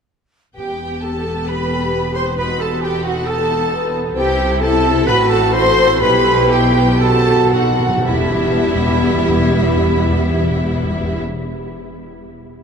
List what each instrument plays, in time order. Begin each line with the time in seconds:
0.57 double bass section E1, timpani E2, cello section E2, viola section B3 G4, violin section G4 G5, clarinet G4, flute section G5
1.02 clarinet A4, violin section A4 A5, flute section A5
1.47 french horn section G4, violin section B4 B5, clarinet B4, flute section B5
2.15 violin section C5 C6, clarinet C5, flute section C6
2.38 timpani E2, viola section D#4, french horn section F#4, violin section B4 B5, clarinet B4, flute section B5
2.60 clarinet A4, violin section A4 A5, flute section A5
2.82 clarinet G4, violin section G4 G5, flute section G5
3.04 clarinet F#4, violin section F#4 F#5, flute section F#5
3.26 clarinet A4, french horn section A4, violin section A4 A5, flute section A5
3.71 french horn section B4
4.16 double bass section C2, cello section C3, viola section C4 E4, clarinet G4, violin section G4 G5, french horn section C5, flute section G5
4.61 french horn section E4, clarinet A4, violin section A4 A5, flute section A5
5.07 double bass section A1, cello section A2, french horn section F#4, viola section F#4, clarinet B4, violin section B4 B5, flute section B5
5.29 clarinet A4, violin section A4 A5, flute section A5
5.53 french horn section A4, clarinet C5, violin section C5 C6, flute section C6
6.00 double bass section B1, timpani B2, cello section B2, viola section G3 E4, french horn section G4, clarinet B4, violin section B4 B5, flute section B5
6.50 clarinet G4, violin section G4 G5, flute section G5
7.00 timpani B2, viola section D#3 C4, french horn section F#4, violin section A4 A5, clarinet A4, flute section A5
7.10 timpani B2
7.18 timpani B2
7.35 timpani B2
7.44 timpani B2
7.53 timpani B2, french horn section D#4, clarinet F#4, violin section F#4 F#5, flute section F#5
7.62 timpani B2
7.71 timpani B2
7.80 timpani B2
7.89 timpani B2
7.98 timpani B2
8.08 double bass section E1, timpani E2, cello section E2, viola section G3 B3, french horn section G3 B3, clarinet E4, violin section E4 E5, flute section G4
8.14 timpani E2
8.21 timpani E2
8.28 timpani E2
8.35 timpani E2
8.41 timpani E2
8.48 timpani E2
8.54 timpani E2
8.61 timpani E2
8.68 timpani E2
8.75 timpani E2
8.82 timpani E2
8.88 timpani E2
8.95 timpani E2
9.02 timpani E2
9.08 timpani E2
9.15 timpani E2
9.22 timpani E2
9.29 timpani E2
9.36 timpani E2
9.43 timpani E2
9.50 timpani E2
9.56 timpani E2
9.62 timpani E2
9.70 timpani E2
9.76 timpani E2
9.83 timpani E2
9.90 timpani E2
9.96 timpani E2
10.03 timpani E2
10.10 timpani E2
10.16 timpani E2
10.23 timpani E2
10.29 timpani E2
10.36 timpani E2
10.43 timpani E2
10.49 timpani E2
10.56 timpani E2
10.63 timpani E2
10.70 timpani E2
10.77 timpani E2
10.84 timpani E2
10.90 timpani E2
10.97 timpani E2
11.03 timpani E2
11.10 timpani E2
11.17 timpani E2